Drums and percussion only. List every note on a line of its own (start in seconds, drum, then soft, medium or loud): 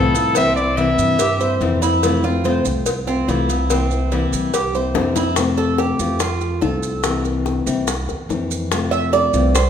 0.15 cowbell medium
0.15 maracas medium
0.35 cowbell loud
0.35 maracas medium
0.57 maracas soft
0.77 cowbell medium
0.77 maracas soft
0.99 maracas medium
1.19 cowbell loud
1.19 maracas medium
1.40 maracas soft
1.61 cowbell medium
1.61 maracas soft
1.82 cowbell medium
1.82 maracas medium
2.03 cowbell loud
2.03 maracas medium
2.24 maracas soft
2.44 cowbell medium
2.44 maracas soft
2.65 maracas medium
2.86 cowbell loud
2.86 maracas loud
3.08 maracas soft
3.29 cowbell medium
3.29 maracas soft
3.50 cowbell medium
3.50 maracas medium
3.70 cowbell loud
3.70 maracas medium
3.91 maracas soft
4.12 cowbell medium
4.12 maracas soft
4.33 maracas medium
4.54 cowbell loud
4.54 maracas medium
4.75 maracas soft
4.95 cowbell medium
4.95 high bongo loud
4.95 maracas soft
5.16 cowbell medium
5.16 low bongo loud
5.16 maracas medium
5.36 high bongo medium
5.36 maracas medium
5.57 high bongo soft
5.57 maracas soft
5.78 high bongo medium
5.78 maracas soft
5.99 maracas medium
6.20 high bongo medium
6.20 maracas medium
6.41 high bongo soft
6.41 maracas soft
6.62 high bongo soft
6.62 low bongo medium
6.62 maracas soft
6.83 maracas medium
7.03 high bongo medium
7.03 maracas medium
7.25 high bongo soft
7.25 maracas soft
7.46 high bongo medium
7.46 maracas soft
7.67 maracas medium
7.87 high bongo medium
7.87 maracas medium
8.09 high bongo soft
8.09 maracas soft
8.30 high bongo soft
8.30 low bongo medium
8.30 maracas soft
8.51 maracas medium
8.72 high bongo medium
8.72 maracas medium
8.92 high bongo soft
8.92 maracas soft
9.13 high bongo medium
9.13 maracas soft
9.34 maracas medium
9.55 high bongo medium
9.55 maracas medium